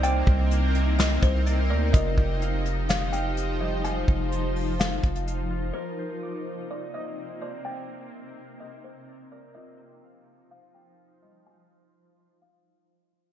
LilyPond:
<<
  \new Staff \with { instrumentName = "Kalimba" } { \time 4/4 \key f \dorian \tempo 4 = 126 g''2 ees''8 c''4 d''8 | ees''2 f''8 g''4 ees''8 | aes''2 f''2 | c''2 d''8 ees''4 d''8 |
g''2 ees''8 c''4 d''8 | ees''2 f''8 g''4 ees''8 | aes''2 f''2 | }
  \new Staff \with { instrumentName = "Harp" } { \time 4/4 \key f \dorian <c'' d'' ees''>2. d''8 bes'8 | f'8 g'8 f''4. f''4 g8 | f''2. f''8 f'8 | bes'8 c''8 d'''4. ees''4 c''8 |
d''2. d''8 bes'8 | f'8 g'8 f''4. f''4 g8 | f''2. f''8 f'8 | }
  \new Staff \with { instrumentName = "Ambient pad" } { \time 4/4 \key f \dorian << { <c bes ees'>1 | <f c''>1~ | <f c''>1 | <c bes>1~ |
<c bes>1 | <f ees' c''>1~ | <f ees' c''>1 | } \\ { c'1 | g'1 | f'1 | c'1~ |
c'1 | f'1~ | f'1 | } >> }
  \new Staff \with { instrumentName = "808-style bass" } { \clef bass \time 4/4 \key f \dorian c,8 c,2 c,4 d,8 | f,,8 f,,2.~ f,,8~ | f,,8 f,,2 f,,4. | r1 |
r1 | r1 | r1 | }
  \new DrumStaff \with { instrumentName = "Drums" } \drummode { \time 4/4 hh8 bd8 hh8 hh8 <hh sn>8 <hh bd>8 hh4 | <hh bd>8 bd8 hh8 hh8 <hh sn>8 hh8 hh4 | hh8 bd8 hh8 hho8 <hh sn>8 <hh bd>16 hh16 hh4 | r4 r4 r4 r4 |
r4 r4 r4 r4 | r4 r4 r4 r4 | r4 r4 r4 r4 | }
>>